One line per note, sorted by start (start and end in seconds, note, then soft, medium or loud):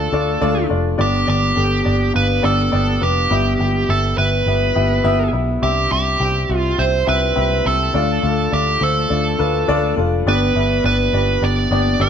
0.00 1.02 A2 medium
0.00 0.13 A3 medium
0.00 0.13 D4 medium
0.00 0.13 F4 medium
0.00 0.67 A4 medium
0.00 1.01 C5 medium
0.00 0.13 D5 medium
0.13 0.36 D2 medium
0.13 0.39 A3 medium
0.13 0.40 D4 medium
0.13 0.40 F4 medium
0.13 0.40 D5 medium
0.41 0.66 D2 medium
0.41 0.68 A3 medium
0.41 0.68 D4 medium
0.41 0.68 F4 medium
0.41 0.69 D5 loud
0.69 0.94 F1 medium
0.69 0.97 A3 medium
0.69 0.96 D4 medium
0.69 0.97 F4 medium
0.69 0.97 D5 medium
0.98 1.23 G1 medium
0.98 1.82 G2 medium
0.98 1.82 D3 medium
0.98 1.25 B3 medium
0.98 1.26 D4 medium
0.98 1.26 G4 medium
0.98 1.27 G4 medium
0.98 1.26 D5 medium
1.27 1.52 G1 medium
1.27 1.54 B3 medium
1.27 1.54 D4 medium
1.27 1.55 G4 medium
1.27 2.12 G4 medium
1.27 1.55 D5 medium
1.55 1.81 G1 medium
1.55 1.83 B3 medium
1.55 1.83 D4 medium
1.55 1.84 G4 medium
1.55 1.84 A4 medium
1.84 2.10 G1 medium
1.84 2.12 B3 medium
1.84 2.12 D4 soft
1.84 2.12 G4 medium
1.84 2.13 D5 medium
2.13 2.39 G1 medium
2.13 2.41 B3 medium
2.13 2.41 D4 medium
2.13 2.41 G4 medium
2.13 2.45 B4 medium
2.13 2.42 F5 medium
2.42 2.68 G1 medium
2.42 2.70 B3 medium
2.42 2.70 D4 medium
2.42 2.71 G4 medium
2.42 3.04 A4 medium
2.42 2.71 D5 medium
2.72 2.97 G1 medium
2.72 2.99 B3 medium
2.72 3.00 D4 medium
2.72 3.00 G4 medium
2.72 3.00 D5 medium
3.01 3.26 F1 medium
3.01 3.29 B3 medium
3.01 3.29 D4 medium
3.01 3.29 G4 medium
3.01 3.92 G4 medium
3.01 3.29 B4 medium
3.30 3.55 G1 medium
3.30 4.14 G2 medium
3.30 4.14 G3 medium
3.30 3.57 B3 medium
3.30 3.58 E4 medium
3.30 3.58 G4 medium
3.30 3.58 E5 medium
3.59 3.84 G1 medium
3.59 3.87 B3 medium
3.59 3.87 E4 medium
3.59 3.87 G4 medium
3.59 3.87 G5 medium
3.88 4.13 G1 medium
3.88 4.16 B3 medium
3.88 4.16 E4 soft
3.88 4.16 G4 medium
3.88 4.18 A4 medium
3.88 4.16 E5 medium
4.18 4.41 G1 medium
4.18 4.45 B3 medium
4.18 4.45 E4 soft
4.18 4.45 G4 soft
4.18 5.30 B4 medium
4.18 4.45 E5 medium
4.46 4.70 G1 medium
4.46 4.74 B3 medium
4.46 4.74 E4 medium
4.46 4.74 G4 medium
4.46 4.75 E5 medium
4.75 5.00 G1 medium
4.75 5.02 B3 medium
4.75 5.03 E4 medium
4.75 5.03 G4 medium
4.75 5.03 E5 medium
5.04 5.28 G1 medium
5.04 5.31 B3 medium
5.04 5.32 E4 medium
5.04 5.32 G4 medium
5.04 5.32 E5 loud
5.33 5.57 B1 medium
5.33 5.60 B3 medium
5.33 5.61 E4 medium
5.33 5.61 G4 medium
5.33 5.61 E5 medium
5.62 5.86 C2 medium
5.62 6.46 G2 medium
5.62 5.89 C4 medium
5.62 5.89 E4 medium
5.62 5.90 G4 medium
5.62 5.91 G4 medium
5.62 5.90 E5 medium
5.90 6.15 C2 medium
5.90 6.18 C4 medium
5.90 6.18 E4 medium
5.90 6.19 G4 medium
5.90 6.56 G4 medium
5.90 6.19 E5 medium
6.20 6.44 C2 medium
6.20 6.47 C4 medium
6.20 6.47 E4 medium
6.20 6.48 G4 medium
6.20 6.48 G5 medium
6.49 6.73 C2 medium
6.49 6.76 C4 medium
6.49 6.76 E4 soft
6.49 6.77 G4 soft
6.49 6.77 E5 medium
6.56 6.81 F4 medium
6.78 7.02 C2 medium
6.78 7.05 C4 medium
6.78 7.05 E4 medium
6.78 7.05 G4 medium
6.78 7.08 C5 medium
6.78 7.06 E5 medium
7.07 7.31 C2 medium
7.07 7.34 C4 medium
7.07 7.34 E4 medium
7.07 7.34 G4 medium
7.07 7.67 B4 medium
7.07 7.34 E5 medium
7.36 7.61 C2 medium
7.36 7.63 C4 medium
7.36 7.63 E4 medium
7.36 7.63 G4 medium
7.36 7.63 E5 medium
7.65 7.89 C2 medium
7.65 7.92 C4 medium
7.65 7.92 E4 medium
7.65 7.92 G4 medium
7.65 8.56 A4 medium
7.65 7.93 E5 medium
7.94 8.18 D2 medium
7.94 8.77 A2 medium
7.94 8.21 A3 medium
7.94 8.21 D4 medium
7.94 8.21 F4 medium
7.94 8.21 D5 medium
8.22 8.47 D2 medium
8.22 8.50 A3 medium
8.22 8.50 D4 medium
8.22 8.50 F4 medium
8.22 8.50 F5 medium
8.51 8.76 D2 medium
8.51 8.79 A3 medium
8.51 8.79 D4 medium
8.51 8.79 F4 medium
8.51 8.83 G4 medium
8.51 8.79 D5 medium
8.80 9.05 D2 medium
8.80 9.08 A3 medium
8.80 9.08 D4 medium
8.80 9.08 F4 soft
8.80 9.94 A4 medium
8.80 9.08 C5 medium
9.09 9.34 D2 medium
9.09 9.37 A3 medium
9.09 9.37 D4 medium
9.09 9.37 F4 medium
9.09 9.37 D5 medium
9.39 9.63 D2 medium
9.39 9.66 A3 medium
9.39 9.66 D4 medium
9.39 9.66 F4 medium
9.39 9.66 B4 medium
9.68 9.92 D2 medium
9.68 9.95 A3 medium
9.68 9.95 D4 medium
9.68 9.95 F4 medium
9.68 9.95 D5 loud
9.97 10.21 F1 medium
9.97 10.24 A3 medium
9.97 10.24 D4 medium
9.97 10.24 F4 medium
9.97 10.24 A4 medium
10.26 10.50 G1 medium
10.26 11.09 G2 medium
10.26 11.09 D3 medium
10.26 10.53 B3 medium
10.26 10.53 D4 medium
10.26 10.54 G4 medium
10.26 10.84 B4 medium
10.26 10.54 D5 medium
10.55 10.79 G1 medium
10.55 10.82 B3 medium
10.55 10.82 D4 medium
10.55 10.82 G4 medium
10.55 10.83 E5 medium
10.84 11.08 G1 medium
10.84 11.11 B3 medium
10.84 11.11 D4 medium
10.84 11.11 G4 medium
10.84 11.44 B4 medium
10.84 11.11 D5 medium
11.13 11.37 G1 medium
11.13 11.40 B3 medium
11.13 11.40 D4 medium
11.13 11.40 G4 medium
11.13 11.40 D5 medium
11.42 11.66 G1 medium
11.42 11.69 B3 medium
11.42 11.69 D4 medium
11.42 11.69 G4 medium
11.42 11.69 D5 medium
11.42 12.02 D5 medium
11.71 11.94 G1 medium
11.71 11.98 B3 medium
11.71 11.98 D4 medium
11.71 11.98 G4 medium
11.71 11.98 D5 medium
11.99 12.09 G1 medium
11.99 12.09 B3 medium
11.99 12.09 D4 medium
11.99 12.09 G4 medium
11.99 12.09 B4 medium
11.99 12.09 D5 medium